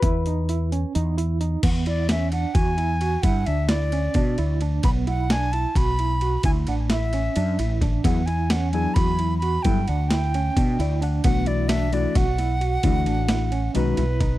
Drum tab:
CC |-------|x------|-------|-------|
RD |-------|xxxxxxx|xxxxxxx|xxxxxxx|
HH |xxxxxxx|-------|-------|-------|
SD |-------|--o----|--o----|-oo----|
BD |o------|o---o--|o---o--|o---o--|

CC |-------|-------|-------|-------|
RD |xxxxxxx|xxxxxxx|xxxxxxx|xxxxxxx|
HH |-------|-------|-------|-------|
SD |-ooo--o|--o----|--o----|--o-oo-|
BD |o-----o|o---o--|o---o--|o---o--|

CC |-------|
RD |xxxxxxx|
HH |-------|
SD |-oo----|
BD |o-----o|